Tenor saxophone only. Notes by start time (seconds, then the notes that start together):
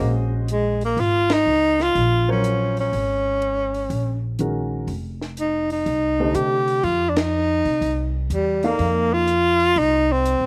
Already playing: A#3
0.51 G#3
0.85 A#3
1.00 F4
1.33 D#4
1.83 F4
2.32 C#4
2.80 C#4
5.40 D#4
5.72 D#4
6.35 G4
6.84 F4
7.09 D4
7.17 D#4
8.33 G3
8.66 A#3
9.13 F4
9.78 D#4
10.12 C4